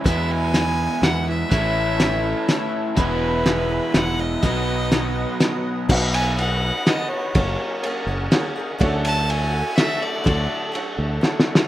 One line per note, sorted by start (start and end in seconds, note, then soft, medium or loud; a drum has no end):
0.00 2.94 E5 medium
0.00 1.48 G#5 medium
0.00 4.40 E6 medium
0.04 0.54 E2 medium
0.04 0.87 E2 medium
0.04 0.54 B2 medium
0.04 0.52 E3 medium
0.04 0.53 G#3 medium
0.04 0.54 B3 medium
0.04 0.55 E4 medium
0.04 1.50 B4 medium
0.04 0.32 E5 loud
0.04 kick loud
0.04 closed hi-hat medium
0.31 1.05 G#5 loud
0.52 1.01 E3 medium
0.52 1.01 G#3 medium
0.52 1.02 B3 medium
0.52 1.04 E4 medium
0.52 snare medium
0.52 closed hi-hat medium
1.01 1.43 E2 medium
1.01 1.26 E3 medium
1.01 1.27 G#3 medium
1.01 1.26 B3 medium
1.01 1.25 E4 medium
1.01 1.28 F#5 medium
1.01 snare medium
1.01 closed hi-hat medium
1.26 1.50 E3 soft
1.26 1.51 G#3 soft
1.26 1.52 B3 soft
1.26 1.51 E4 soft
1.26 2.70 E5 medium
1.50 2.33 A1 loud
1.50 2.00 A2 medium
1.50 2.00 E3 medium
1.50 2.00 A3 medium
1.50 2.01 C#4 medium
1.50 2.03 E4 medium
1.50 2.95 C#5 medium
1.50 2.95 A5 medium
1.50 kick loud
1.50 closed hi-hat medium
2.00 2.25 E3 medium
2.00 2.25 A3 medium
2.00 2.24 C#4 medium
2.00 2.22 E4 medium
2.00 snare medium
2.00 closed hi-hat medium
2.23 2.49 A3 soft
2.23 2.49 C#4 soft
2.23 2.48 E4 medium
2.48 2.96 E3 medium
2.48 2.97 A3 medium
2.48 2.98 C#4 medium
2.48 2.98 E4 medium
2.48 snare medium
2.48 closed hi-hat medium
2.96 3.79 E1 loud
2.96 3.46 E2 medium
2.96 3.46 B2 medium
2.96 3.43 E3 medium
2.96 3.45 G#3 medium
2.96 3.46 B3 medium
2.96 3.46 E4 medium
2.96 5.85 B4 medium
2.96 3.98 B4 medium
2.96 4.43 E5 medium
2.96 4.42 G#5 medium
2.96 kick loud
2.96 closed hi-hat medium
3.44 3.69 E3 medium
3.44 3.70 G#3 medium
3.44 3.69 B3 medium
3.44 3.68 E4 medium
3.44 snare medium
3.44 closed hi-hat medium
3.69 3.91 E3 soft
3.69 3.93 G#3 medium
3.69 3.94 B3 medium
3.69 3.94 E4 medium
3.92 4.36 E1 medium
3.92 4.18 E3 medium
3.92 4.18 G#3 medium
3.92 4.18 B3 medium
3.92 4.17 E4 medium
3.92 snare medium
3.92 closed hi-hat medium
3.97 4.21 F#5 loud
4.18 4.43 E3 soft
4.18 4.44 G#3 soft
4.18 4.43 B3 soft
4.18 4.43 E4 soft
4.18 5.65 D#5 loud
4.41 5.25 B1 medium
4.41 4.92 B2 medium
4.41 4.90 F#3 medium
4.41 4.91 B3 medium
4.41 4.92 D#4 medium
4.41 4.93 F#4 medium
4.41 5.87 D#5 medium
4.41 5.86 F#5 medium
4.41 5.86 D#6 medium
4.41 kick loud
4.41 closed hi-hat medium
4.91 5.39 F#3 medium
4.91 5.40 B3 medium
4.91 5.41 D#4 medium
4.91 5.42 F#4 medium
4.91 snare medium
4.91 closed hi-hat medium
5.40 5.88 F#3 medium
5.40 5.89 B3 medium
5.40 5.90 D#4 medium
5.40 5.90 F#4 medium
5.40 snare medium
5.40 closed hi-hat medium
5.87 6.70 B1 loud
5.87 6.38 B2 medium
5.87 6.37 F#3 medium
5.87 6.37 B3 loud
5.87 6.29 F#4 loud
5.87 7.32 B4 medium
5.87 6.28 B4 medium
5.87 7.33 D#5 medium
5.87 6.29 D#5 medium
5.87 8.76 F#5 medium
5.87 6.29 F#5 loud
5.87 7.33 D#6 medium
5.87 kick loud
5.87 crash loud
5.91 6.38 D#4 medium
5.91 6.40 F#4 loud
6.13 6.36 G#5 loud
6.13 ride medium
6.38 6.86 F#3 medium
6.38 6.86 B3 medium
6.38 6.87 D#4 medium
6.38 6.75 F#4 medium
6.38 6.89 F#4 medium
6.38 6.76 B4 medium
6.38 6.76 D#5 medium
6.38 6.88 F#5 loud
6.38 6.76 F#5 medium
6.38 ride medium
6.86 7.10 F#3 medium
6.86 7.11 B3 medium
6.86 7.11 D#4 medium
6.86 7.35 F#4 medium
6.86 7.09 F#4 medium
6.86 7.35 B4 medium
6.86 7.35 D#5 medium
6.86 7.10 D#5 loud
6.86 7.35 F#5 medium
6.86 snare medium
6.86 ride medium
7.08 7.36 D#4 soft
7.08 7.35 F#4 medium
7.08 7.82 C#5 medium
7.13 7.35 B3 soft
7.35 7.55 F#1 loud
7.35 7.83 F#3 medium
7.35 7.83 A#3 medium
7.35 7.85 C#4 medium
7.35 7.74 G#4 medium
7.35 7.85 G#4 loud
7.35 8.79 A#4 medium
7.35 7.74 A#4 medium
7.35 7.74 C#5 medium
7.35 7.74 F#5 medium
7.35 8.79 G#5 medium
7.35 8.79 C#6 medium
7.35 kick loud
7.35 ride medium
7.83 8.08 F#3 medium
7.83 8.08 A#3 medium
7.83 8.08 C#4 medium
7.83 8.20 G#4 medium
7.83 8.20 A#4 medium
7.83 8.20 C#5 medium
7.83 8.20 F#5 medium
7.83 ride medium
7.87 8.06 G#4 medium
8.07 8.27 F#1 loud
8.07 8.32 C#4 medium
8.07 8.32 G#4 medium
8.11 8.31 A#3 medium
8.31 8.56 F#3 medium
8.31 8.56 A#3 medium
8.31 8.56 C#4 medium
8.31 8.81 G#4 medium
8.31 8.54 G#4 medium
8.31 8.80 A#4 medium
8.31 8.79 C#5 medium
8.31 8.79 F#5 loud
8.31 snare medium
8.31 ride medium
8.56 8.79 A#3 medium
8.56 8.79 C#4 medium
8.56 8.80 G#4 medium
8.79 9.61 D2 loud
8.79 9.28 D3 loud
8.79 9.27 F#3 loud
8.79 9.28 A3 medium
8.79 9.29 C#4 loud
8.79 9.19 D4 medium
8.79 9.31 F#4 medium
8.79 9.19 A4 loud
8.79 11.68 A4 medium
8.79 9.19 C#5 medium
8.79 9.19 F#5 loud
8.79 11.68 F#5 medium
8.79 11.68 C#6 medium
8.79 kick loud
8.79 ride medium
9.05 9.32 A5 loud
9.05 ride medium
9.27 9.52 F#3 medium
9.27 9.53 A3 medium
9.27 9.53 C#4 medium
9.27 9.50 F#4 medium
9.27 9.66 A4 medium
9.27 9.66 C#5 medium
9.27 9.67 D5 medium
9.27 9.66 F#5 medium
9.27 9.77 G#5 loud
9.27 ride medium
9.51 9.76 A3 soft
9.51 9.78 C#4 soft
9.51 9.76 F#4 medium
9.75 10.24 F#3 medium
9.75 10.24 A3 medium
9.75 10.26 C#4 medium
9.75 10.52 D4 medium
9.75 10.52 A4 medium
9.75 10.04 E5 loud
9.75 10.52 F#5 medium
9.75 10.52 C#6 medium
9.75 snare medium
9.75 ride medium
9.80 10.26 F#4 medium
10.02 10.74 D5 medium
10.24 10.46 D2 loud
10.24 10.73 D3 medium
10.24 10.71 F#3 medium
10.24 10.72 A3 medium
10.24 10.75 F#4 loud
10.24 kick loud
10.24 ride medium
10.72 11.21 F#3 medium
10.72 11.21 A3 medium
10.72 11.22 C#4 medium
10.72 11.12 D4 medium
10.72 11.24 F#4 medium
10.72 11.12 A4 medium
10.72 ride medium
10.76 11.12 C#5 medium
10.76 11.12 F#5 loud
10.98 11.18 D2 loud
11.21 11.68 F#3 medium
11.21 11.68 A3 medium
11.21 11.68 C#4 medium
11.21 11.68 D4 medium
11.21 11.68 F#4 medium
11.21 11.68 A4 medium
11.21 11.68 C#5 medium
11.21 11.68 F#5 medium
11.21 11.46 A5 medium
11.21 snare medium
11.40 snare medium
11.48 11.68 D5 medium
11.55 snare loud